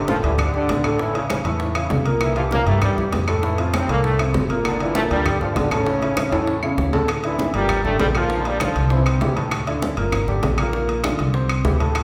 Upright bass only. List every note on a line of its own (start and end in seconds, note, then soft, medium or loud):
0.00 0.18 G1 medium
0.23 0.66 D2 medium
0.68 1.39 A1 medium
1.44 1.87 E2 medium
1.90 2.61 C2 medium
2.66 3.09 G2 medium
3.12 3.83 F2 medium
3.88 4.31 C2 loud
4.34 5.05 G1 medium
5.10 5.53 D2 medium
5.56 6.27 A1 medium
6.32 6.74 E2 medium
6.78 7.48 D2 medium
7.54 7.96 G1 medium
7.99 8.70 A#1 medium
8.75 9.18 C2 loud
9.21 9.91 D2 medium
9.97 10.40 G1 medium
10.43 11.13 A#1 medium
11.19 11.61 C2 medium
11.65 12.03 D2 medium